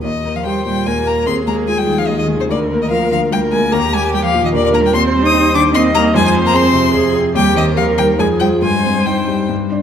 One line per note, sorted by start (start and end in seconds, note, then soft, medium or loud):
0.02 0.85 D#2 soft
0.02 0.10 D#3 soft
0.02 0.37 D#5 medium
0.25 0.58 A#3 soft
0.34 0.46 F3 soft
0.34 0.45 F5 soft
0.45 0.66 G3 medium
0.45 0.78 G4 soft
0.45 0.89 C5 soft
0.45 0.64 G5 medium
0.65 0.98 A#2 soft
0.65 0.87 G3 soft
0.65 0.88 G5 medium
0.85 1.25 D#2 soft
0.85 1.05 G#3 soft
0.85 1.29 A#4 soft
0.85 1.08 G#5 medium
1.06 1.28 A#3 soft
1.06 1.27 A#3 soft
1.06 1.26 A#5 medium
1.26 2.06 D#2 soft
1.26 1.46 C4 medium
1.26 2.52 G#4 medium
1.26 1.35 C6 medium
1.47 1.80 G#3 soft
1.47 1.69 A#3 medium
1.47 1.55 A#5 medium
1.67 1.78 G#3 medium
1.67 2.00 F4 soft
1.67 1.80 G#5 medium
1.78 1.99 G3 medium
1.78 2.00 G5 medium
1.87 2.20 D#3 soft
1.98 2.08 F3 soft
1.98 2.09 F5 medium
2.07 2.48 D#2 soft
2.07 2.18 D#3 medium
2.07 2.18 D#5 medium
2.18 2.40 D#3 medium
2.18 2.26 D#5 medium
2.28 2.49 G#3 soft
2.39 2.50 C3 soft
2.39 2.44 C5 medium
2.49 3.30 D2 soft
2.49 2.81 D3 soft
2.49 3.31 A#4 medium
2.49 2.59 D5 medium
2.71 3.03 A#3 soft
2.79 2.89 D#3 medium
2.79 2.90 D#5 medium
2.90 3.10 F3 medium
2.90 3.24 F4 soft
2.90 3.11 F5 medium
3.11 3.44 D3 soft
3.11 3.19 F3 medium
3.11 3.20 F5 medium
3.31 3.71 D2 soft
3.31 3.39 G3 medium
3.31 3.74 A#4 medium
3.31 3.41 G5 medium
3.51 3.70 G#3 medium
3.51 3.73 A#3 soft
3.51 3.74 G#5 medium
3.71 4.51 D#2 medium
3.71 3.79 A#3 medium
3.71 4.53 G4 medium
3.71 3.94 A#5 medium
3.93 4.01 G#3 medium
3.93 4.25 A#3 soft
3.93 4.13 G#5 medium
4.13 4.17 G3 medium
4.13 4.45 G4 soft
4.13 4.23 G5 medium
4.22 4.44 F3 medium
4.22 4.43 F5 medium
4.34 4.65 A#2 soft
4.43 4.53 D#3 medium
4.43 4.49 D#5 medium
4.53 4.92 D#2 medium
4.53 4.58 D3 medium
4.53 4.95 A#4 medium
4.53 4.64 D5 medium
4.64 4.75 D3 medium
4.64 4.69 D5 medium
4.73 4.93 A#3 medium
4.73 4.84 A#3 medium
4.73 4.78 A#5 medium
4.83 4.93 G3 medium
4.83 4.93 G5 medium
4.93 5.74 D#2 medium
4.93 5.24 C4 medium
4.93 5.74 C5 medium
4.93 5.02 C6 medium
5.13 5.46 G3 soft
5.23 5.53 D#4 medium
5.23 5.54 D#6 medium
5.34 5.66 G4 soft
5.54 5.86 D#3 medium
5.54 5.62 D4 medium
5.54 5.63 D6 loud
5.73 6.14 D#2 medium
5.73 5.93 C4 medium
5.73 6.16 D#5 medium
5.73 5.82 C6 medium
5.95 6.14 G3 medium
5.95 6.14 A#3 medium
5.95 6.03 A#5 loud
6.14 6.93 F2 medium
6.14 6.18 G#3 medium
6.14 6.94 C5 medium
6.14 6.25 G#5 loud
6.25 6.46 G#3 medium
6.25 6.34 G#5 medium
6.35 6.67 C4 medium
6.45 6.55 A#3 medium
6.45 6.57 A#5 medium
6.54 7.14 C4 medium
6.54 6.86 G#4 medium
6.54 7.15 C6 medium
6.73 7.06 C3 soft
6.94 7.34 F2 medium
6.94 7.34 G#4 medium
7.16 7.36 C4 medium
7.35 8.16 D#2 medium
7.35 7.57 G3 medium
7.35 7.76 G4 medium
7.35 7.55 G5 loud
7.55 7.78 D#3 medium
7.55 7.89 C4 soft
7.55 7.65 D#5 medium
7.76 7.99 F3 medium
7.76 8.10 G4 soft
7.76 8.21 A#4 medium
7.76 7.85 F5 medium
7.97 8.19 D#3 soft
7.97 8.17 G3 medium
7.97 8.06 G5 medium
8.18 8.61 F2 medium
8.18 8.26 G#3 medium
8.18 8.64 G#4 medium
8.18 8.27 G#5 medium
8.40 8.48 G3 medium
8.40 8.60 F4 soft
8.40 8.60 C5 soft
8.40 8.48 G5 medium
8.62 9.48 G2 medium
8.62 9.07 G#3 medium
8.62 9.73 C5 medium
8.62 9.08 G#5 medium
8.84 9.19 C4 soft
9.06 9.50 G3 medium
9.06 9.42 D#4 soft
9.06 9.50 G5 medium
9.27 9.50 G3 soft
9.49 9.82 G2 medium
9.72 9.82 D4 soft
9.72 9.82 D5 soft